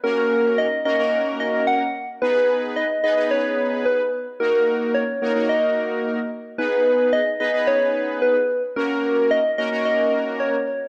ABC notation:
X:1
M:4/4
L:1/16
Q:1/4=110
K:G#m
V:1 name="Soft synth lead"
A4 d2 d4 d2 f3 z | B4 d2 d2 c4 B3 z | A4 c4 d6 z2 | B4 d2 d2 c4 B3 z |
A4 d2 d2 d4 c3 z |]
V:2 name="Analog polysynth"
[A,CFA]4- [A,CFA] z [A,CFA] [A,CFA]6 z3 | [B,DGB]4- [B,DGB] z [B,DGB] [B,DGB]6 z3 | [A,DFA]4- [A,DFA] z [A,DFA] [A,DFA]6 z3 | [B,DGB]4- [B,DGB] z [B,DGB] [B,DGB]6 z3 |
[A,CFA]4- [A,CFA] z [A,CFA] [A,CFA]6 z3 |]